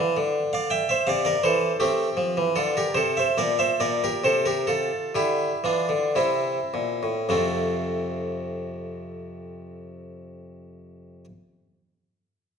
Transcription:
Already playing: F5 A5
0.00 E3
0.17 D3
0.53 D5 F5
0.70 E5 G5
0.89 C5 E5
1.07 C3 D5 F5
1.25 A#4 D5
1.43 E3 A4 C5
1.80 A3 C4 G4
2.17 F3
2.37 E3
2.56 D3 F4 A4
2.77 G4 A#4
2.94 C3 A4 C5
3.17 C5 E5
3.38 A#2 A#4 D5
3.59 C5 E5
3.80 A#2 A#4 D5
4.04 G4 A#4
4.24 C3 A4 C5
4.46 G4 A#4
4.67 F4 A4
5.15 D3 E4 G4
5.64 E3 D4 F4
5.89 D3
6.15 C3 C4 E4
6.74 A#2
7.03 A2
7.29 F2 C3 A3 C4 F4

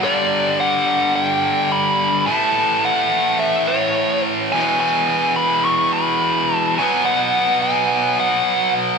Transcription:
0.02 G2 D3 G3 D5
0.60 F#5
1.16 G5
1.72 B5
2.27 A2 E3 A3 A5
2.85 F#5
3.40 E5
3.67 C#5
4.52 E2 B2 E3 G#5
4.80 G#5
5.36 B5
5.65 C#6
5.93 B5
6.56 A5
6.78 B2 F#3 B3 G#5
7.06 F#5
7.62 G#5
8.20 F#5

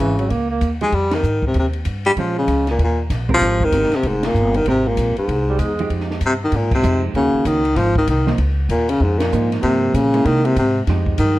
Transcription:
Already playing: C#3
0.00 G#1 E3
0.19 F#3, ride
0.30 C#2 A#3, kick, ride
0.51 A#3
0.61 D#2, kick, hi-hat pedal, ride
0.81 F3 G#3 D#4 G4, ride
0.92 F2 G3, kick, ride
1.11 D#3, snare, ride
1.23 G#2, hi-hat pedal
1.43 kick
1.47 C3
1.54 D#2, kick, ride
1.59 C3
1.73 ride
1.85 G2, kick, hi-hat pedal, ride
2.05 G3, ride
2.16 A#2 F3 G#3 C#4, kick, ride
2.38 C#3
2.47 C#2, kick, hi-hat pedal, ride
2.67 A#2, snare, ride
2.78 D#2, kick, ride
2.84 A#2
3.10 A#1, kick, snare, hi-hat pedal, ride
3.29 G#3 C4 G4 A#4, kick
3.34 F3
3.41 G#1, kick, snare, ride
3.60 D#3, kick
3.72 G1 G#3 C4 G4 A#4, kick, hi-hat pedal, ride
3.83 snare
3.92 C3, muted upright bass stroke, snare, ride
4.03 F1, kick, ride
4.08 G#2
4.23 A#2, snare, ride
4.34 G1, hi-hat pedal
4.54 D#3, ride
4.66 G#1 C3 G#3 C4 G4 A#4, kick, ride
4.88 A#2
4.97 A#1, kick, hi-hat pedal, ride
5.17 G#2, muted upright bass stroke, ride
5.28 C2, kick, ride
5.49 G3
5.59 E2 G#3, kick, hi-hat pedal, ride
5.79 F3 G#3 D#4 G4, ride
5.90 F2, kick, ride
6.00 snare
6.11 snare
6.21 G2, kick, hi-hat pedal, ride
6.26 C3
6.44 D#3
6.52 G#2, kick, ride
6.56 A#2
6.71 C3, kick, crash
6.83 F2 F3 G#3 D#4 G4, hi-hat pedal
7.14 D#2 C#3 D#3 A#3 C#4 F#4, kick, ride
7.34 muted upright bass stroke
7.45 C#2 D#3, kick, hi-hat pedal, ride
7.65 ride
7.76 G#1 F3, kick, snare, ride
7.96 D#3, kick
8.07 C2 D#3, kick, hi-hat pedal, ride
8.27 F3 A#3 D#4, snare
8.38 C#2, kick, ride
8.69 D#2 A#2, kick, hi-hat pedal, ride
8.89 C#3, ride
9.00 F2 G#2, kick
9.19 A#2, snare, ride
9.32 G#2 F3 A#3 D#4, hi-hat pedal
9.52 snare, ride
9.63 G2 C3 F3 A#3, kick, ride
9.94 A#2 C#3, kick, hi-hat pedal, ride
10.14 G#3 A#3 E4, ride
10.25 C3 D#3, kick, ride
10.45 C3, ride
10.56 G#2 C3, kick, hi-hat pedal, ride
10.87 F2 F3 G#3 D#4 G4, kick, snare, ride
11.06 kick
11.18 G2 D#3, kick, hi-hat pedal, ride

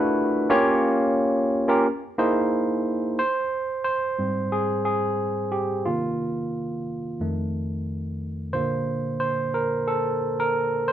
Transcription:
Already playing: A3 D4 E4 F4 F#4 A#4 B4
0.50 A#3 C#4 F4 G4 C#5
1.68 A#3 C#4 F4 G4 A#4
2.18 A#3 D#4 E4 G#4 C5
3.19 C5
3.84 C5
4.19 G#2 G3 C4
4.52 G#4
4.85 G#4
5.52 G4
5.85 C3 D#3 A#3 F4
7.20 F2 D#3 A3
8.53 A#2 D3 A#3 C5
9.20 C5
9.54 A#4
9.88 A4
10.40 A#4
10.88 C5

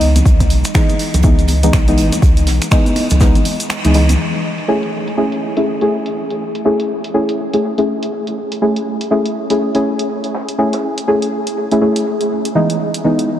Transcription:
Already playing: E3 G#3 B3 D#4
0.01 C#2, closed hi-hat, open hi-hat
0.16 closed hi-hat, high conga, low conga, shaker
0.26 C#2, kick, closed hi-hat, shaker
0.40 kick, closed hi-hat, muted conga, shaker
0.50 B1, closed hi-hat, open hi-hat
0.64 finger snap, closed hi-hat, shaker
0.74 E3 G#3 B3 D#4, finger snap, kick, snare, closed hi-hat, muted conga, shaker
0.89 closed hi-hat, high conga, shaker
0.99 closed hi-hat, open hi-hat
1.14 C#2, closed hi-hat, low conga, shaker
1.23 E3 G#3 B3 D#4, kick, closed hi-hat, muted conga, shaker
1.39 closed hi-hat, shaker
1.48 closed hi-hat, open hi-hat, high conga
1.63 E3 G#3 B3 D#4, closed hi-hat, muted conga, shaker
1.73 B1, finger snap, kick, snare, closed hi-hat, shaker
1.88 E3 G#3 B3 D#4, closed hi-hat, shaker
1.98 G#1, closed hi-hat, open hi-hat
2.12 closed hi-hat, muted conga, high conga, shaker
2.22 C#2, kick, closed hi-hat, shaker
2.37 closed hi-hat, shaker
2.47 B1, snare, closed hi-hat, open hi-hat, muted conga
2.62 finger snap, closed hi-hat, shaker
2.71 E3 G#3 B3 D#4, finger snap, kick, snare, closed hi-hat, shaker
2.86 closed hi-hat, high conga, shaker
2.96 closed hi-hat, open hi-hat, muted conga
3.10 C#2, closed hi-hat, low conga, shaker
3.20 E3 G#3 B3 D#4, kick, snare, closed hi-hat, shaker
3.35 G#1, closed hi-hat, muted conga, shaker
3.45 closed hi-hat, open hi-hat, high conga
3.60 closed hi-hat, shaker
3.70 finger snap, snare, closed hi-hat, shaker
3.84 C#2 E3 G#3 B3 D#4, closed hi-hat, muted conga, shaker
3.94 E3 G#3 B3 D#4, closed hi-hat, open hi-hat
4.09 closed hi-hat, high conga, low conga, shaker
4.19 closed hi-hat, crash
4.34 closed hi-hat
4.43 closed hi-hat
4.58 closed hi-hat
4.68 A3 C#4 E4 G#4
4.83 closed hi-hat
4.93 closed hi-hat
5.08 closed hi-hat
5.17 A3 C#4 E4 G#4
5.32 closed hi-hat
5.42 closed hi-hat
5.57 A3 C#4 E4 G#4, closed hi-hat
5.66 closed hi-hat
5.81 A3 C#4 E4 G#4, closed hi-hat
5.90 closed hi-hat
6.06 closed hi-hat
6.16 closed hi-hat
6.30 closed hi-hat
6.40 snare, closed hi-hat
6.55 closed hi-hat
6.64 A3 C#4 E4 G#4, closed hi-hat
6.80 closed hi-hat
6.90 closed hi-hat
7.04 closed hi-hat
7.14 A3 C#4 E4 G#4, closed hi-hat
7.29 closed hi-hat
7.39 closed hi-hat
7.53 A3 C#4 E4 G#4, closed hi-hat
7.64 closed hi-hat
7.78 A3 C#4 E4 G#4, closed hi-hat
7.88 closed hi-hat
8.03 closed hi-hat
8.12 closed hi-hat
8.27 closed hi-hat
8.38 closed hi-hat
8.52 closed hi-hat
8.62 A3 C#4 E4 G#4, closed hi-hat
8.76 closed hi-hat
8.86 closed hi-hat
9.01 closed hi-hat
9.10 A3 C#4 E4 G#4, closed hi-hat
9.26 closed hi-hat
9.35 closed hi-hat
9.50 A3 C#4 E4 G#4, closed hi-hat
9.60 closed hi-hat
9.74 A3 C#4 E4 G#4, closed hi-hat
9.86 closed hi-hat
9.99 closed hi-hat
10.09 closed hi-hat
10.24 closed hi-hat
10.34 snare, closed hi-hat
10.49 closed hi-hat
10.58 A3 C#4 E4 G#4, closed hi-hat
10.73 snare, closed hi-hat
10.98 closed hi-hat
11.07 A3 C#4 E4 G#4, closed hi-hat
11.22 closed hi-hat
11.32 closed hi-hat
11.47 closed hi-hat
11.57 closed hi-hat
11.71 A3 C#4 E4 G#4, closed hi-hat
11.81 A3 C#4 E4 G#4, closed hi-hat
11.96 closed hi-hat
12.06 closed hi-hat
12.21 closed hi-hat
12.31 closed hi-hat
12.45 closed hi-hat
12.55 E3 G#3 B3 D#4, closed hi-hat
12.70 closed hi-hat
12.79 closed hi-hat
12.94 closed hi-hat
13.04 E3 G#3 B3 D#4, closed hi-hat
13.19 closed hi-hat
13.29 closed hi-hat

